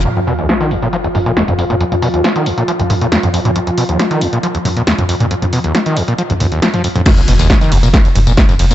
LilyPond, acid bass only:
\new Staff \with { instrumentName = "Acid bass" } { \clef bass \time 4/4 \tempo 4 = 137 f,16 f,16 b,16 ees,16 f16 ees16 ees,16 bes,16 f16 ees,16 ges,16 bes,16 ees,16 f,16 f,16 bes,16 | f,16 f,16 b,16 ees,16 f16 ees16 ees,16 bes,16 f16 ees,16 ges,16 bes,16 ees,16 f,16 f,16 bes,16 | f,16 f,16 b,16 ees,16 f16 ees16 ees,16 bes,16 f16 ees,16 ges,16 bes,16 ees,16 f,16 f,16 bes,16 | f,16 f,16 b,16 ees,16 f16 ees16 ees,16 bes,16 f16 ees,16 ees,16 ees,16 f16 f16 f,16 f,16 |
f,16 f,16 b,16 ees,16 f16 ees16 ees,16 bes,16 f16 ees,16 ges,16 bes,16 ees,16 f,16 f,16 bes,16 | }